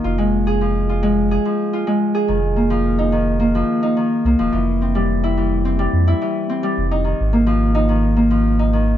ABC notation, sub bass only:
X:1
M:4/4
L:1/16
Q:1/4=107
K:Bbdor
V:1 name="Sub bass" clef=bass
F,,,8- F,,,2 z6 | F,,,8- F,,,2 z4 C,, E,,, | F,,,8- F,,,2 F,, z4 z | F,,,3 A,,,12- A,,, |]